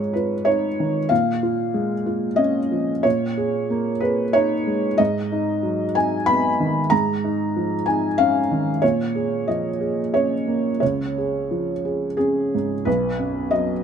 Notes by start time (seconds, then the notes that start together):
Already playing: G#2 G#3 F4 C#5
0.13 F4 B4
0.45 D#4 C#5
0.80 D#3
1.09 A#2 F5
1.43 F4
1.74 G#3
2.06 F4
2.36 C#4 D#5
2.72 F3
3.03 A#2 C#5
3.37 G#4
3.70 A#3
4.00 G#4 B4
4.33 D#4 C#5
4.67 G#3
4.98 G#2 D#5
5.32 D#4
5.63 F#3
5.95 D#4 G#5
6.26 B3 B5
6.60 D#3
6.90 G#2 A#5
7.24 D#4
7.56 F3
7.86 D#4 G#5
8.18 C#4 F5
8.51 D#3
8.82 A#2 C#5
9.15 G#4
9.48 F3 D#5
9.81 G#4
10.14 C#4 C#5
10.47 A#3
10.80 C#2 C#5
11.18 G#4
11.51 F3
11.85 G#4
12.17 C#4 G#4
12.55 G#2
12.85 B1 B4
13.19 F#2
13.51 F#3 D#5